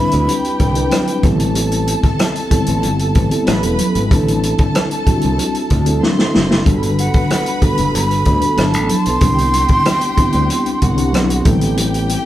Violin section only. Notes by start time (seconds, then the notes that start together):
Already playing: E4 E5
0.28 G4 G5
1.24 A4 A5
3.47 B4 B5
4.11 A4 A5
6.02 C5 C6
6.65 B4 B5
8.58 A4 A5
9.22 G4 G5
10.81 F#4 F#5
11.44 G4 G5